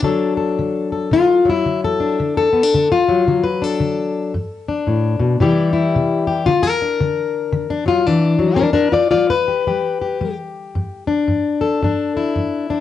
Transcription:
0.03 D3 F#3 D4 A4
0.37 A4
0.59 D3
0.92 A4
1.11 D3 F4
1.45 F#3
1.49 E4
1.66 D3
1.84 A4
2.00 D4
2.20 D3
2.37 A4
2.53 B3
2.63 D4
2.74 D3
2.92 F4
3.08 F#3
3.28 D3 F#3
3.44 B4
3.62 D4 A4
3.80 D3
4.34 G2
4.68 D4
4.87 A2
5.20 B2
5.40 C3 E3 G3 E4 G4
5.73 E4
5.96 C3
6.27 G4
6.46 D3 F4
6.63 A#4
6.82 D4
7.00 D3
7.53 D3
7.70 D4
7.86 F#3 F4
8.07 E3 D4
8.39 F#3
8.56 D4 A#4
8.62 G3
8.73 D4 A#4
8.92 F4 D5
9.11 G3 F4 D5
9.30 B4
9.48 G4
9.67 G3 G4
10.02 G4
10.21 G3
10.75 G2
11.07 D4
11.28 G2
11.61 A4
11.83 G2 D4
12.17 E4
12.36 G2
12.70 D4

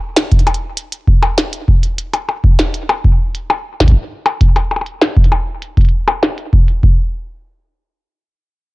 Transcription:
0.16 snare, closed hi-hat
0.32 kick, closed hi-hat
0.39 closed hi-hat
0.47 closed hi-hat, percussion blips
0.54 closed hi-hat
0.77 closed hi-hat
0.92 closed hi-hat
1.08 kick
1.23 percussion blips
1.38 snare, closed hi-hat
1.53 closed hi-hat
1.68 kick
1.83 closed hi-hat
1.98 closed hi-hat
2.14 closed hi-hat, percussion blips
2.29 percussion blips
2.44 kick
2.59 snare, closed hi-hat
2.74 closed hi-hat
2.89 percussion blips
3.04 kick
3.35 closed hi-hat
3.50 percussion blips
3.80 kick, snare, closed hi-hat
3.84 kick
3.88 kick, closed hi-hat
3.92 kick
4.26 closed hi-hat, percussion blips
4.41 kick, closed hi-hat
4.56 closed hi-hat, percussion blips
4.71 percussion blips
4.76 percussion blips
4.81 percussion blips
4.86 closed hi-hat
5.01 snare, closed hi-hat
5.17 kick
5.24 closed hi-hat
5.32 percussion blips
5.62 closed hi-hat
5.77 kick, closed hi-hat
5.81 closed hi-hat
5.85 closed hi-hat
5.89 closed hi-hat
6.08 closed hi-hat, percussion blips
6.23 snare, closed hi-hat
6.38 closed hi-hat
6.53 kick
6.68 closed hi-hat
6.83 kick

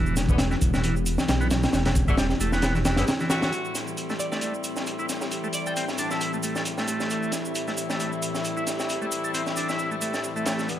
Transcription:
Already playing: E1 E3 B3 E4 G4
0.06 shaker
0.16 snare, closed hi-hat, shaker
0.29 D3 E3 G3 B3, kick, shaker
0.38 snare, closed hi-hat, shaker
0.51 E3, snare, shaker
0.61 E1, kick, closed hi-hat, shaker
0.74 E3, snare, shaker
0.84 E3, closed hi-hat, shaker
0.96 shaker
1.06 closed hi-hat, shaker
1.18 B1, snare, shaker
1.28 B1, snare, closed hi-hat, shaker
1.41 B3, shaker
1.51 snare, closed hi-hat, shaker
1.63 snare, closed hi-hat, shaker
1.73 E1, snare, closed hi-hat, shaker
1.85 E3, snare, closed hi-hat, shaker
1.95 kick, closed hi-hat, shaker
2.08 D3 E3 G3 A3 E4, kick, shaker
2.18 G3, snare, closed hi-hat, shaker
2.29 snare, shaker
2.40 E1 A3, closed hi-hat, shaker
2.52 B3, snare, shaker
2.62 snare, closed hi-hat, shaker
2.75 E3, snare, shaker
2.85 E1 E3, snare, closed hi-hat, shaker
2.96 G1 D3 E3 G3 B3 E4, snare, closed hi-hat, shaker
3.08 snare, closed hi-hat, shaker
3.20 E3, snare, shaker
3.30 E3 G3 A3 C4 F#4, snare, closed hi-hat, shaker
3.42 snare, closed hi-hat, shaker
3.52 A2 E3 G3 A3 C4 E4 G4, closed hi-hat, shaker
3.65 shaker
3.75 snare, closed hi-hat, shaker
3.87 shaker
3.97 closed hi-hat, shaker
4.09 A3, snare, shaker
4.19 D5, closed hi-hat, shaker
4.32 A3 D5, snare, shaker
4.41 A3, closed hi-hat, shaker
4.54 shaker
4.64 closed hi-hat, shaker
4.76 snare, shaker
4.86 closed hi-hat, shaker
4.99 E4, shaker
5.09 snare, closed hi-hat, shaker
5.21 snare, shaker
5.31 closed hi-hat, shaker
5.44 A3, shaker
5.53 D5, closed hi-hat, shaker
5.66 A4 G5, shaker
5.76 C4 G5, closed hi-hat, shaker
5.88 snare, shaker
5.98 D4 A5, closed hi-hat, shaker
6.11 E4 A5, snare, shaker
6.21 closed hi-hat, shaker
6.33 A3, shaker
6.43 A3, closed hi-hat, shaker
6.55 A4, snare, shaker
6.65 closed hi-hat, shaker
6.78 A3, snare, shaker
6.88 A3, closed hi-hat, shaker
7.00 snare, shaker
7.10 G3 A3 C4 E4, closed hi-hat, shaker
7.23 shaker
7.32 snare, closed hi-hat, shaker
7.45 shaker
7.55 closed hi-hat, shaker
7.67 A3, snare, shaker
7.77 closed hi-hat, shaker
7.90 A3, snare, shaker
8.00 A3, closed hi-hat, shaker
8.12 shaker
8.22 closed hi-hat, shaker
8.35 snare, shaker
8.45 closed hi-hat, shaker
8.57 E4, shaker
8.67 snare, closed hi-hat, shaker
8.79 snare, shaker
8.89 closed hi-hat, shaker
9.02 A3, shaker
9.12 closed hi-hat, shaker
9.24 A4, shaker
9.34 C4, closed hi-hat, shaker
9.46 snare, shaker
9.56 D4, closed hi-hat, shaker
9.69 E4, snare, shaker
9.79 shaker
9.91 A3, shaker
10.01 A3, closed hi-hat, shaker
10.14 A4, snare, shaker
10.24 shaker
10.36 A3, shaker
10.46 A3, snare, closed hi-hat, shaker
10.59 snare, shaker
10.69 E2 D3 E3 G3 B3 D4, closed hi-hat, shaker

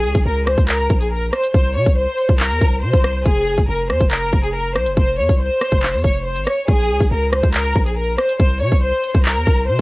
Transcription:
Already playing: G#4
0.04 C#2
0.15 A#1, kick, closed hi-hat
0.26 C#2 A#4
0.47 C5, cross-stick
0.58 C#2, kick, closed hi-hat
0.68 A#4, clap, closed hi-hat
0.90 A#1, kick
1.00 G#4, closed hi-hat
1.11 A#4
1.33 C5, cross-stick, closed hi-hat
1.43 closed hi-hat
1.54 C2 C5, kick, closed hi-hat
1.76 C3 C#5
1.86 C2, kick, closed hi-hat
1.97 C5
2.18 closed hi-hat
2.29 C2, kick
2.40 A#4, clap, closed hi-hat
2.51 E2, closed hi-hat
2.61 C2, kick, closed hi-hat
2.82 C3 C5
2.93 C2, kick, closed hi-hat
3.04 cross-stick
3.25 F1 G#4, kick, closed hi-hat
3.58 F1, kick, closed hi-hat
3.68 F1 A#4
3.90 F2 C5, cross-stick
4.01 F1, kick, closed hi-hat
4.11 A#4, clap, closed hi-hat
4.33 F1, kick
4.43 G#4, closed hi-hat
4.54 A#4
4.75 C2 C5, cross-stick, closed hi-hat
4.86 F1, closed hi-hat
4.96 F1 C5, kick, closed hi-hat
5.18 F2 C#5
5.29 C2, kick, closed hi-hat
5.40 C5
5.61 cross-stick, closed hi-hat
5.72 F1, kick
5.83 clap, closed hi-hat
5.88 closed hi-hat
5.93 F2, closed hi-hat
5.99 closed hi-hat
6.04 F1 C#5, kick, closed hi-hat
6.25 C5
6.36 G#1, closed hi-hat
6.47 C#5, cross-stick
6.68 A#1 G#4, kick, closed hi-hat
6.90 C#2
7.01 A#1, kick, closed hi-hat
7.11 C#2 A#4
7.33 C5, cross-stick
7.43 C#2, kick, closed hi-hat
7.54 A#4, clap, closed hi-hat
7.76 A#1, kick
7.86 G#4, closed hi-hat
7.97 A#4
8.18 C5, cross-stick, closed hi-hat
8.29 closed hi-hat
8.39 C2 C5, kick, closed hi-hat
8.61 C3 C#5
8.72 C2, kick, closed hi-hat
8.83 C5
9.04 closed hi-hat
9.15 C2, kick
9.25 A#4, clap, closed hi-hat
9.36 E2, closed hi-hat
9.47 C2, kick, closed hi-hat
9.68 C3 C5

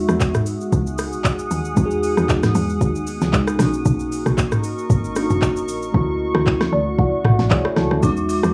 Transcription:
Already playing: G#3 B3 D#4 F#4 G#4 F#5 D#6
0.09 E2, cross-stick, shaker
0.20 kick, clap, shaker
0.34 cross-stick, mid tom, shaker
0.46 open hi-hat, shaker
0.61 shaker
0.72 C#2, kick, shaker
0.87 shaker
0.98 cross-stick, open hi-hat, shaker
1.13 B1, shaker
1.24 kick, clap, shaker
1.39 shaker
1.51 D#2, open hi-hat, shaker
1.65 shaker
1.74 E2 G#3 B3 D#4, kick, shaker
1.79 F#4
1.86 G#4
1.91 shaker
2.03 open hi-hat, shaker
2.17 E2, cross-stick, shaker
2.29 kick, clap, shaker
2.43 cross-stick, snare, mid tom, shaker
2.55 E2, open hi-hat, shaker
2.70 shaker
2.81 D#2, kick, shaker
2.96 shaker
3.07 open hi-hat, shaker
3.21 C#2, snare, shaker
3.32 G#3 B3 D#4 G#4, kick, clap, shaker
3.47 cross-stick, shaker
3.57 B1 A#3 C#4 D4 A#4 D#5 C#6, cross-stick, snare, open hi-hat, shaker
3.62 F#4
3.67 D#4
3.74 shaker
3.85 B1, kick, shaker
4.00 shaker
4.12 open hi-hat, shaker
4.26 B1, cross-stick, shaker
4.38 kick, clap, shaker
4.52 cross-stick, mid tom, shaker
4.64 open hi-hat, shaker
4.78 shaker
4.90 G#1, kick, shaker
5.04 shaker
5.15 A#3 C#4 D4 F#4, cross-stick, open hi-hat, shaker
5.23 D#4
5.30 F#1, shaker
5.42 kick, clap, shaker
5.57 shaker
5.68 A#1, open hi-hat, shaker
5.82 shaker
5.92 D2 A3 C#4 E4 F#4 E5, kick
5.97 F#4
6.35 D2, cross-stick
6.46 kick, clap
6.61 cross-stick, snare
6.73 D2 D5
6.99 C#2 F#5, kick
7.25 B1 F#5, cross-stick, mid tom
7.39 A1, snare
7.51 C#2 G#4 C#5 G#5, kick, clap
7.65 cross-stick
7.76 C#2 E4 A4 A5, cross-stick, snare
7.91 D2 C#4 F#4, cross-stick
8.01 E2 G#3 B3 D#4 G#4 F#5 D#6, kick, high agogo, shaker
8.06 F#4
8.17 shaker
8.29 open hi-hat, high agogo, shaker
8.43 E2, cross-stick, shaker

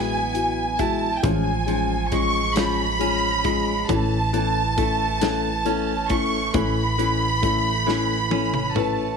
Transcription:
Already playing: A1 F#3 G#3 B3 E4 F#4 G#5
0.34 E4 F#4, closed hi-hat
0.79 G#3 E4 F#4 A5, kick, closed hi-hat
1.16 G5
1.23 A1 F3 G#3 C#4 F4 G#5, kick, closed hi-hat
1.67 F3 G#3 C#4 F4, closed hi-hat
2.12 G#3 C#4 F4 C#6, kick, closed hi-hat
2.55 F3 G#3 C#4 F4 B5, snare, closed hi-hat
2.99 G#3 C#4 F4, closed hi-hat
3.44 G#3 C#4 F4, kick, closed hi-hat
3.88 A1 E3 A3 C#4 E4 A5, kick, closed hi-hat
4.33 E3 A3 C#4 E4, closed hi-hat
4.77 A3 C#4 E4, kick, closed hi-hat
5.21 E3 A3 C#4 E4, snare, closed hi-hat
5.65 A3 C#4 E4, closed hi-hat
6.09 A3 C#4 E4 C#6, kick, closed hi-hat
6.53 A1 E3 A3 C#4 E4 B5, kick, closed hi-hat
6.98 E3 A3 C#4 E4, closed hi-hat
7.42 A3 C#4 E4, kick, closed hi-hat
7.87 E3 A3 C#4 E4, snare
8.30 A3 C#4 E4, high tom
8.54 mid tom
8.75 A3 C#4 E4 B4 A5, mid tom

